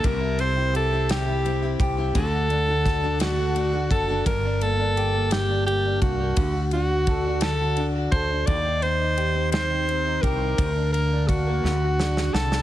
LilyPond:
<<
  \new Staff \with { instrumentName = "Alto saxophone" } { \time 6/8 \key g \minor \tempo 4. = 57 bes'8 c''8 a'8 g'4 r8 | a'4. fis'4 a'8 | bes'8 a'4 g'8 g'8 fis'8~ | fis'8 fis'4 a'8 r8 c''8 |
d''8 c''4 c''4 bes'8~ | bes'8 ais'8 fis'4. a'8 | }
  \new Staff \with { instrumentName = "Steel-string acoustic guitar" } { \time 6/8 \key g \minor <c g c' e' g'>8 <g c' e' g'>16 <c' e' g'>8 <c' e' g'>16 <c g c' e' g'>8 <g c' e' g'>16 <c' e' g'>8 <c' e' g'>16 | <d a d' fis' a'>8 <a d' fis'>16 <d' fis' a'>8 <d' fis' a'>16 <d a d' fis' a'>8 <a d' fis' a'>16 <d' fis' a'>8 <d' fis' a'>16 | r2. | r2. |
r2. | r2. | }
  \new Staff \with { instrumentName = "Clean electric guitar" } { \time 6/8 \key g \minor c16 e'16 c'16 e'16 g'16 c'16 c16 e'16 c'16 e'16 g'16 c'16 | d16 fis'16 d'16 fis'16 a'16 d'16 d16 fis'16 d'16 fis'16 a'16 d'16 | g,16 d'16 bes16 d'16 g'16 bes16 g,16 d'16 bes16 d'8 bes16 | d16 fis'16 d'16 fis'16 a'16 d'16 d16 fis'16 d'16 fis'16 a'16 d'16 |
ees16 ees'16 c'16 ees'16 g'16 c'16 ees16 ees'16 c'16 ees'16 g'16 c'16 | d16 d'16 ais16 d'8 ais16 d16 fis'16 d'16 fis'16 a'16 d'16 | }
  \new Staff \with { instrumentName = "Fretless electric bass" } { \clef bass \time 6/8 \key g \minor c,2~ c,8 c,8 | d,2~ d,8 fis,,8 | g,,2~ g,,8 c,8 | d,2~ d,8 d,8 |
ees,2~ ees,8 c,8 | d,4. d,4 c,8 | }
  \new DrumStaff \with { instrumentName = "Drums" } \drummode { \time 6/8 <bd cymr>8 cymr8 cymr8 <cymr sn>8 cymr8 <bd cymr>8 | <bd cymr>8 cymr8 <bd cymr sn>8 <cymr sn>8 cymr8 <bd cymr>8 | <bd cymr>8 cymr8 cymr8 <cymr sn>8 cymr8 <bd cymr>8 | <bd cymr>8 cymr8 <bd cymr>8 <cymr sn>8 cymr8 <bd cymr>8 |
<bd cymr>8 cymr8 cymr8 <cymr sn>8 cymr8 <bd cymr>8 | <bd cymr>8 cymr8 <bd cymr>8 sn8 sn16 sn16 sn16 sn16 | }
>>